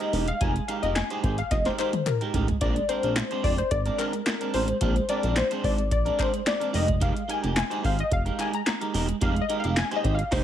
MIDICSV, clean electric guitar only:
0, 0, Header, 1, 3, 480
1, 0, Start_track
1, 0, Tempo, 550459
1, 360, Time_signature, 4, 2, 24, 8
1, 9102, End_track
2, 0, Start_track
2, 0, Title_t, "Clean electric guitar"
2, 0, Program_c, 0, 27
2, 2, Note_on_c, 0, 70, 67
2, 7, Note_on_c, 0, 67, 68
2, 10, Note_on_c, 0, 63, 61
2, 14, Note_on_c, 0, 56, 65
2, 105, Note_off_c, 0, 56, 0
2, 110, Note_off_c, 0, 63, 0
2, 112, Note_off_c, 0, 67, 0
2, 116, Note_off_c, 0, 70, 0
2, 116, Note_on_c, 0, 56, 72
2, 120, Note_on_c, 0, 63, 85
2, 122, Note_on_c, 0, 67, 84
2, 126, Note_on_c, 0, 70, 82
2, 233, Note_off_c, 0, 70, 0
2, 237, Note_off_c, 0, 67, 0
2, 240, Note_off_c, 0, 63, 0
2, 301, Note_off_c, 0, 56, 0
2, 356, Note_on_c, 0, 56, 74
2, 360, Note_on_c, 0, 63, 93
2, 363, Note_on_c, 0, 67, 83
2, 366, Note_on_c, 0, 70, 89
2, 475, Note_off_c, 0, 70, 0
2, 478, Note_off_c, 0, 67, 0
2, 482, Note_off_c, 0, 63, 0
2, 541, Note_off_c, 0, 56, 0
2, 596, Note_on_c, 0, 56, 64
2, 601, Note_on_c, 0, 63, 66
2, 604, Note_on_c, 0, 67, 73
2, 607, Note_on_c, 0, 70, 70
2, 716, Note_off_c, 0, 70, 0
2, 721, Note_off_c, 0, 67, 0
2, 725, Note_off_c, 0, 63, 0
2, 727, Note_off_c, 0, 56, 0
2, 727, Note_on_c, 0, 70, 69
2, 731, Note_on_c, 0, 67, 63
2, 735, Note_on_c, 0, 63, 55
2, 737, Note_on_c, 0, 56, 55
2, 829, Note_off_c, 0, 56, 0
2, 832, Note_off_c, 0, 63, 0
2, 834, Note_off_c, 0, 67, 0
2, 837, Note_off_c, 0, 70, 0
2, 965, Note_on_c, 0, 72, 84
2, 968, Note_on_c, 0, 67, 78
2, 972, Note_on_c, 0, 63, 75
2, 975, Note_on_c, 0, 56, 73
2, 1069, Note_off_c, 0, 56, 0
2, 1072, Note_off_c, 0, 63, 0
2, 1075, Note_off_c, 0, 67, 0
2, 1079, Note_off_c, 0, 72, 0
2, 1079, Note_on_c, 0, 56, 64
2, 1083, Note_on_c, 0, 63, 60
2, 1085, Note_on_c, 0, 67, 58
2, 1089, Note_on_c, 0, 72, 68
2, 1205, Note_off_c, 0, 67, 0
2, 1207, Note_off_c, 0, 63, 0
2, 1208, Note_off_c, 0, 72, 0
2, 1226, Note_off_c, 0, 56, 0
2, 1446, Note_on_c, 0, 70, 55
2, 1451, Note_on_c, 0, 67, 48
2, 1455, Note_on_c, 0, 63, 50
2, 1458, Note_on_c, 0, 56, 47
2, 1550, Note_off_c, 0, 56, 0
2, 1553, Note_off_c, 0, 63, 0
2, 1557, Note_off_c, 0, 67, 0
2, 1560, Note_off_c, 0, 70, 0
2, 1561, Note_on_c, 0, 56, 81
2, 1563, Note_on_c, 0, 63, 92
2, 1568, Note_on_c, 0, 67, 87
2, 1571, Note_on_c, 0, 70, 88
2, 1681, Note_off_c, 0, 70, 0
2, 1684, Note_off_c, 0, 67, 0
2, 1688, Note_off_c, 0, 63, 0
2, 1743, Note_off_c, 0, 56, 0
2, 1927, Note_on_c, 0, 70, 66
2, 1932, Note_on_c, 0, 67, 62
2, 1934, Note_on_c, 0, 63, 53
2, 1938, Note_on_c, 0, 56, 57
2, 2028, Note_off_c, 0, 56, 0
2, 2033, Note_off_c, 0, 63, 0
2, 2035, Note_off_c, 0, 67, 0
2, 2038, Note_off_c, 0, 70, 0
2, 2039, Note_on_c, 0, 56, 79
2, 2043, Note_on_c, 0, 63, 89
2, 2046, Note_on_c, 0, 67, 76
2, 2049, Note_on_c, 0, 70, 87
2, 2157, Note_off_c, 0, 70, 0
2, 2161, Note_off_c, 0, 67, 0
2, 2164, Note_off_c, 0, 63, 0
2, 2222, Note_off_c, 0, 56, 0
2, 2278, Note_on_c, 0, 56, 92
2, 2282, Note_on_c, 0, 60, 97
2, 2285, Note_on_c, 0, 62, 99
2, 2289, Note_on_c, 0, 70, 99
2, 2397, Note_off_c, 0, 70, 0
2, 2401, Note_off_c, 0, 62, 0
2, 2403, Note_off_c, 0, 60, 0
2, 2462, Note_off_c, 0, 56, 0
2, 2517, Note_on_c, 0, 56, 63
2, 2520, Note_on_c, 0, 60, 63
2, 2524, Note_on_c, 0, 62, 66
2, 2528, Note_on_c, 0, 70, 64
2, 2636, Note_off_c, 0, 70, 0
2, 2640, Note_off_c, 0, 62, 0
2, 2644, Note_off_c, 0, 60, 0
2, 2646, Note_on_c, 0, 70, 70
2, 2647, Note_off_c, 0, 56, 0
2, 2650, Note_on_c, 0, 62, 64
2, 2655, Note_on_c, 0, 60, 64
2, 2658, Note_on_c, 0, 56, 50
2, 2748, Note_off_c, 0, 56, 0
2, 2752, Note_off_c, 0, 60, 0
2, 2754, Note_off_c, 0, 62, 0
2, 2755, Note_off_c, 0, 70, 0
2, 2886, Note_on_c, 0, 72, 88
2, 2891, Note_on_c, 0, 62, 77
2, 2896, Note_on_c, 0, 60, 64
2, 2897, Note_on_c, 0, 56, 66
2, 2985, Note_off_c, 0, 56, 0
2, 2990, Note_off_c, 0, 60, 0
2, 2995, Note_off_c, 0, 62, 0
2, 2996, Note_off_c, 0, 72, 0
2, 2996, Note_on_c, 0, 56, 60
2, 3001, Note_on_c, 0, 60, 71
2, 3005, Note_on_c, 0, 62, 69
2, 3007, Note_on_c, 0, 72, 74
2, 3120, Note_off_c, 0, 62, 0
2, 3121, Note_off_c, 0, 72, 0
2, 3123, Note_off_c, 0, 60, 0
2, 3144, Note_off_c, 0, 56, 0
2, 3364, Note_on_c, 0, 70, 54
2, 3368, Note_on_c, 0, 62, 53
2, 3372, Note_on_c, 0, 60, 54
2, 3375, Note_on_c, 0, 56, 51
2, 3465, Note_off_c, 0, 56, 0
2, 3469, Note_off_c, 0, 60, 0
2, 3471, Note_off_c, 0, 62, 0
2, 3476, Note_off_c, 0, 70, 0
2, 3476, Note_on_c, 0, 56, 88
2, 3479, Note_on_c, 0, 60, 84
2, 3482, Note_on_c, 0, 62, 88
2, 3486, Note_on_c, 0, 70, 96
2, 3594, Note_off_c, 0, 70, 0
2, 3598, Note_off_c, 0, 62, 0
2, 3602, Note_off_c, 0, 60, 0
2, 3661, Note_off_c, 0, 56, 0
2, 3844, Note_on_c, 0, 70, 68
2, 3847, Note_on_c, 0, 62, 68
2, 3852, Note_on_c, 0, 60, 61
2, 3855, Note_on_c, 0, 56, 57
2, 3946, Note_off_c, 0, 56, 0
2, 3949, Note_off_c, 0, 60, 0
2, 3955, Note_off_c, 0, 62, 0
2, 3956, Note_on_c, 0, 56, 91
2, 3957, Note_off_c, 0, 70, 0
2, 3960, Note_on_c, 0, 60, 84
2, 3965, Note_on_c, 0, 62, 81
2, 3968, Note_on_c, 0, 70, 83
2, 4077, Note_off_c, 0, 70, 0
2, 4082, Note_off_c, 0, 62, 0
2, 4085, Note_off_c, 0, 60, 0
2, 4141, Note_off_c, 0, 56, 0
2, 4196, Note_on_c, 0, 56, 79
2, 4199, Note_on_c, 0, 60, 91
2, 4202, Note_on_c, 0, 62, 83
2, 4206, Note_on_c, 0, 70, 83
2, 4315, Note_off_c, 0, 70, 0
2, 4320, Note_off_c, 0, 62, 0
2, 4322, Note_off_c, 0, 60, 0
2, 4381, Note_off_c, 0, 56, 0
2, 4439, Note_on_c, 0, 56, 61
2, 4444, Note_on_c, 0, 60, 72
2, 4446, Note_on_c, 0, 62, 78
2, 4449, Note_on_c, 0, 70, 78
2, 4551, Note_off_c, 0, 70, 0
2, 4557, Note_off_c, 0, 62, 0
2, 4560, Note_off_c, 0, 60, 0
2, 4561, Note_on_c, 0, 70, 69
2, 4563, Note_off_c, 0, 56, 0
2, 4567, Note_on_c, 0, 62, 65
2, 4570, Note_on_c, 0, 60, 60
2, 4573, Note_on_c, 0, 56, 52
2, 4667, Note_off_c, 0, 56, 0
2, 4668, Note_off_c, 0, 60, 0
2, 4672, Note_off_c, 0, 62, 0
2, 4674, Note_off_c, 0, 70, 0
2, 4804, Note_on_c, 0, 72, 85
2, 4809, Note_on_c, 0, 62, 80
2, 4812, Note_on_c, 0, 60, 71
2, 4814, Note_on_c, 0, 56, 68
2, 4905, Note_off_c, 0, 56, 0
2, 4909, Note_off_c, 0, 60, 0
2, 4912, Note_off_c, 0, 62, 0
2, 4915, Note_on_c, 0, 56, 67
2, 4916, Note_off_c, 0, 72, 0
2, 4919, Note_on_c, 0, 60, 62
2, 4922, Note_on_c, 0, 62, 68
2, 4926, Note_on_c, 0, 72, 79
2, 5037, Note_off_c, 0, 62, 0
2, 5040, Note_off_c, 0, 60, 0
2, 5041, Note_off_c, 0, 72, 0
2, 5064, Note_off_c, 0, 56, 0
2, 5279, Note_on_c, 0, 70, 62
2, 5284, Note_on_c, 0, 62, 64
2, 5286, Note_on_c, 0, 60, 51
2, 5290, Note_on_c, 0, 56, 54
2, 5381, Note_off_c, 0, 56, 0
2, 5384, Note_off_c, 0, 60, 0
2, 5389, Note_off_c, 0, 62, 0
2, 5391, Note_on_c, 0, 56, 73
2, 5392, Note_off_c, 0, 70, 0
2, 5394, Note_on_c, 0, 60, 76
2, 5400, Note_on_c, 0, 62, 91
2, 5402, Note_on_c, 0, 70, 90
2, 5509, Note_off_c, 0, 70, 0
2, 5514, Note_off_c, 0, 62, 0
2, 5517, Note_off_c, 0, 60, 0
2, 5579, Note_off_c, 0, 56, 0
2, 5755, Note_on_c, 0, 70, 68
2, 5760, Note_on_c, 0, 62, 66
2, 5765, Note_on_c, 0, 60, 65
2, 5766, Note_on_c, 0, 56, 49
2, 5857, Note_off_c, 0, 56, 0
2, 5868, Note_off_c, 0, 60, 0
2, 5868, Note_on_c, 0, 56, 90
2, 5869, Note_off_c, 0, 70, 0
2, 5872, Note_off_c, 0, 62, 0
2, 5872, Note_on_c, 0, 63, 92
2, 5875, Note_on_c, 0, 67, 84
2, 5879, Note_on_c, 0, 70, 94
2, 5988, Note_off_c, 0, 70, 0
2, 5993, Note_off_c, 0, 67, 0
2, 5996, Note_off_c, 0, 63, 0
2, 6057, Note_off_c, 0, 56, 0
2, 6109, Note_on_c, 0, 56, 86
2, 6113, Note_on_c, 0, 63, 81
2, 6116, Note_on_c, 0, 67, 93
2, 6119, Note_on_c, 0, 70, 87
2, 6225, Note_off_c, 0, 70, 0
2, 6230, Note_off_c, 0, 67, 0
2, 6232, Note_off_c, 0, 63, 0
2, 6297, Note_off_c, 0, 56, 0
2, 6348, Note_on_c, 0, 56, 61
2, 6352, Note_on_c, 0, 63, 62
2, 6355, Note_on_c, 0, 67, 68
2, 6358, Note_on_c, 0, 70, 67
2, 6465, Note_off_c, 0, 70, 0
2, 6470, Note_off_c, 0, 67, 0
2, 6473, Note_off_c, 0, 63, 0
2, 6475, Note_on_c, 0, 70, 67
2, 6476, Note_off_c, 0, 56, 0
2, 6481, Note_on_c, 0, 67, 68
2, 6484, Note_on_c, 0, 63, 57
2, 6487, Note_on_c, 0, 56, 49
2, 6580, Note_off_c, 0, 56, 0
2, 6583, Note_off_c, 0, 63, 0
2, 6585, Note_off_c, 0, 67, 0
2, 6587, Note_off_c, 0, 70, 0
2, 6717, Note_on_c, 0, 72, 86
2, 6722, Note_on_c, 0, 67, 83
2, 6726, Note_on_c, 0, 63, 78
2, 6729, Note_on_c, 0, 56, 71
2, 6822, Note_off_c, 0, 56, 0
2, 6826, Note_off_c, 0, 63, 0
2, 6829, Note_off_c, 0, 67, 0
2, 6832, Note_off_c, 0, 72, 0
2, 6832, Note_on_c, 0, 56, 68
2, 6837, Note_on_c, 0, 63, 75
2, 6840, Note_on_c, 0, 67, 69
2, 6842, Note_on_c, 0, 72, 79
2, 6951, Note_off_c, 0, 67, 0
2, 6954, Note_off_c, 0, 72, 0
2, 6955, Note_off_c, 0, 63, 0
2, 6982, Note_off_c, 0, 56, 0
2, 7199, Note_on_c, 0, 70, 61
2, 7203, Note_on_c, 0, 67, 48
2, 7207, Note_on_c, 0, 63, 48
2, 7210, Note_on_c, 0, 56, 53
2, 7300, Note_off_c, 0, 56, 0
2, 7304, Note_off_c, 0, 63, 0
2, 7308, Note_off_c, 0, 67, 0
2, 7310, Note_off_c, 0, 70, 0
2, 7311, Note_on_c, 0, 56, 83
2, 7315, Note_on_c, 0, 63, 83
2, 7318, Note_on_c, 0, 67, 89
2, 7321, Note_on_c, 0, 70, 92
2, 7428, Note_off_c, 0, 70, 0
2, 7434, Note_off_c, 0, 67, 0
2, 7437, Note_off_c, 0, 63, 0
2, 7498, Note_off_c, 0, 56, 0
2, 7681, Note_on_c, 0, 70, 60
2, 7685, Note_on_c, 0, 67, 60
2, 7689, Note_on_c, 0, 63, 58
2, 7693, Note_on_c, 0, 56, 59
2, 7783, Note_off_c, 0, 56, 0
2, 7787, Note_off_c, 0, 63, 0
2, 7791, Note_off_c, 0, 67, 0
2, 7793, Note_on_c, 0, 56, 89
2, 7794, Note_off_c, 0, 70, 0
2, 7797, Note_on_c, 0, 63, 97
2, 7802, Note_on_c, 0, 67, 87
2, 7804, Note_on_c, 0, 70, 96
2, 7911, Note_off_c, 0, 70, 0
2, 7914, Note_off_c, 0, 67, 0
2, 7918, Note_off_c, 0, 63, 0
2, 7980, Note_off_c, 0, 56, 0
2, 8031, Note_on_c, 0, 56, 100
2, 8036, Note_on_c, 0, 63, 93
2, 8039, Note_on_c, 0, 67, 102
2, 8042, Note_on_c, 0, 70, 113
2, 8151, Note_off_c, 0, 70, 0
2, 8156, Note_off_c, 0, 67, 0
2, 8158, Note_off_c, 0, 63, 0
2, 8219, Note_off_c, 0, 56, 0
2, 8275, Note_on_c, 0, 56, 68
2, 8278, Note_on_c, 0, 63, 64
2, 8282, Note_on_c, 0, 67, 68
2, 8285, Note_on_c, 0, 70, 66
2, 8392, Note_off_c, 0, 70, 0
2, 8397, Note_off_c, 0, 67, 0
2, 8399, Note_off_c, 0, 63, 0
2, 8402, Note_on_c, 0, 70, 69
2, 8403, Note_off_c, 0, 56, 0
2, 8408, Note_on_c, 0, 67, 64
2, 8410, Note_on_c, 0, 63, 61
2, 8413, Note_on_c, 0, 56, 66
2, 8504, Note_off_c, 0, 56, 0
2, 8506, Note_off_c, 0, 63, 0
2, 8509, Note_off_c, 0, 67, 0
2, 8512, Note_off_c, 0, 70, 0
2, 8643, Note_on_c, 0, 72, 94
2, 8648, Note_on_c, 0, 67, 87
2, 8651, Note_on_c, 0, 63, 74
2, 8653, Note_on_c, 0, 56, 75
2, 8742, Note_off_c, 0, 56, 0
2, 8746, Note_off_c, 0, 63, 0
2, 8748, Note_off_c, 0, 67, 0
2, 8752, Note_off_c, 0, 72, 0
2, 8752, Note_on_c, 0, 56, 67
2, 8757, Note_on_c, 0, 63, 62
2, 8759, Note_on_c, 0, 67, 74
2, 8763, Note_on_c, 0, 72, 64
2, 8878, Note_off_c, 0, 67, 0
2, 8880, Note_off_c, 0, 63, 0
2, 8880, Note_off_c, 0, 72, 0
2, 8903, Note_off_c, 0, 56, 0
2, 8992, Note_on_c, 0, 70, 95
2, 8997, Note_on_c, 0, 67, 95
2, 9001, Note_on_c, 0, 63, 97
2, 9003, Note_on_c, 0, 56, 93
2, 9102, Note_off_c, 0, 56, 0
2, 9102, Note_off_c, 0, 63, 0
2, 9102, Note_off_c, 0, 67, 0
2, 9102, Note_off_c, 0, 70, 0
2, 9102, End_track
3, 0, Start_track
3, 0, Title_t, "Muted clean electric guitar strokes"
3, 243, Note_on_c, 9, 29, 55
3, 330, Note_off_c, 9, 29, 0
3, 485, Note_on_c, 9, 29, 40
3, 573, Note_off_c, 9, 29, 0
3, 840, Note_on_c, 9, 29, 46
3, 927, Note_off_c, 9, 29, 0
3, 1211, Note_on_c, 9, 29, 38
3, 1299, Note_off_c, 9, 29, 0
3, 1325, Note_on_c, 9, 29, 36
3, 1412, Note_off_c, 9, 29, 0
3, 1692, Note_on_c, 9, 29, 52
3, 1779, Note_off_c, 9, 29, 0
3, 1804, Note_on_c, 9, 29, 41
3, 1891, Note_off_c, 9, 29, 0
3, 2167, Note_on_c, 9, 29, 52
3, 2254, Note_off_c, 9, 29, 0
3, 2407, Note_on_c, 9, 29, 47
3, 2494, Note_off_c, 9, 29, 0
3, 3125, Note_on_c, 9, 29, 43
3, 3212, Note_off_c, 9, 29, 0
3, 3239, Note_on_c, 9, 29, 37
3, 3327, Note_off_c, 9, 29, 0
3, 3604, Note_on_c, 9, 29, 53
3, 3691, Note_off_c, 9, 29, 0
3, 3717, Note_on_c, 9, 29, 42
3, 3804, Note_off_c, 9, 29, 0
3, 4087, Note_on_c, 9, 29, 46
3, 4175, Note_off_c, 9, 29, 0
3, 4326, Note_on_c, 9, 29, 51
3, 4413, Note_off_c, 9, 29, 0
3, 4677, Note_on_c, 9, 29, 32
3, 4765, Note_off_c, 9, 29, 0
3, 5045, Note_on_c, 9, 29, 46
3, 5132, Note_off_c, 9, 29, 0
3, 5157, Note_on_c, 9, 29, 33
3, 5244, Note_off_c, 9, 29, 0
3, 5519, Note_on_c, 9, 29, 45
3, 5607, Note_off_c, 9, 29, 0
3, 5632, Note_on_c, 9, 29, 44
3, 5719, Note_off_c, 9, 29, 0
3, 5999, Note_on_c, 9, 29, 55
3, 6086, Note_off_c, 9, 29, 0
3, 6235, Note_on_c, 9, 29, 53
3, 6323, Note_off_c, 9, 29, 0
3, 6590, Note_on_c, 9, 29, 49
3, 6678, Note_off_c, 9, 29, 0
3, 6958, Note_on_c, 9, 29, 39
3, 7045, Note_off_c, 9, 29, 0
3, 7071, Note_on_c, 9, 29, 45
3, 7159, Note_off_c, 9, 29, 0
3, 7439, Note_on_c, 9, 29, 59
3, 7526, Note_off_c, 9, 29, 0
3, 7552, Note_on_c, 9, 29, 55
3, 7639, Note_off_c, 9, 29, 0
3, 7921, Note_on_c, 9, 29, 42
3, 8008, Note_off_c, 9, 29, 0
3, 8162, Note_on_c, 9, 29, 49
3, 8249, Note_off_c, 9, 29, 0
3, 8514, Note_on_c, 9, 29, 46
3, 8602, Note_off_c, 9, 29, 0
3, 8883, Note_on_c, 9, 29, 48
3, 8970, Note_off_c, 9, 29, 0
3, 9102, End_track
0, 0, End_of_file